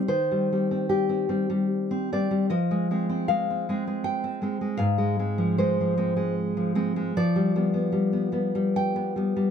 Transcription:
\new Staff \with { instrumentName = "Nylon-string guitar" } { \clef bass \time 3/4 \key f \dorian \tempo 4 = 76 << { c''4 g'4 r8 d''8 | ees''4 f''4 g''4 | f''4 c''4 r4 | d''2 g''4 | } \\ { ees16 g16 <g c'>16 c'16 g16 c'16 <g c'>16 g8 c'16 <g c'>16 g16 | f16 aes16 <aes c'>16 c'16 aes16 c'16 <aes c'>16 aes8 c'16 <aes c'>16 aes16 | aes,16 aes16 <aes c'>16 f16 aes16 f16 <aes c'>16 aes8 f16 <aes c'>16 aes16 | f16 g16 <g b>16 b16 g16 b16 <g b>16 g8 b16 <g b>16 g16 | } >> }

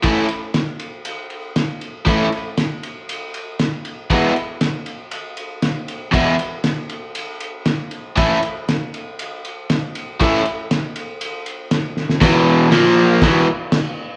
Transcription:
<<
  \new Staff \with { instrumentName = "Overdriven electric guitar" } { \clef bass \time 4/4 \key a \major \tempo 4 = 118 <a, e a cis' e'>8 r2. r8 | <a, e a cis' e'>8 r2. r8 | <e, b, e gis b e'>8 r2. r8 | <e, b, e gis b e'>8 r2. r8 |
<a, e a cis' e'>8 r2. r8 | <a, e a cis' e'>8 r2. r8 | <e, b, e>4 <ais, eis ais>4 <e, b, e>8 r4. | }
  \new DrumStaff \with { instrumentName = "Drums" } \drummode { \time 4/4 <bd cymr>8 cymr8 <cymr sn>8 cymr8 cymr8 cymr8 <cymr sn>8 cymr8 | <bd cymr>8 cymr8 <cymr sn>8 cymr8 cymr8 cymr8 <cymr sn>8 cymr8 | <bd cymr>8 cymr8 <cymr sn>8 cymr8 cymr8 cymr8 <cymr sn>8 cymr8 | <bd cymr>8 cymr8 <cymr sn>8 cymr8 cymr8 cymr8 <cymr sn>8 cymr8 |
<bd cymr>8 cymr8 <cymr sn>8 cymr8 cymr8 cymr8 <cymr sn>8 cymr8 | <bd cymr>8 cymr8 <cymr sn>8 cymr8 cymr8 cymr8 <cymr sn>8 sn16 sn16 | <cymc bd sn>4 <cymc sn>4 <cymc bd sn>4 <cymc sn>4 | }
>>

